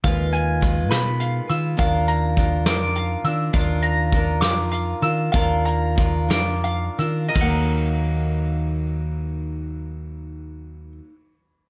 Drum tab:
CC |------|------|------|------|
HH |xxxxxx|xxxxxx|xxxxxx|xxxxxx|
SD |---o--|---o--|---o--|---o--|
BD |o-o---|o-o---|o-o---|o-o---|

CC |x-----|------|
HH |------|------|
SD |------|------|
BD |o-----|------|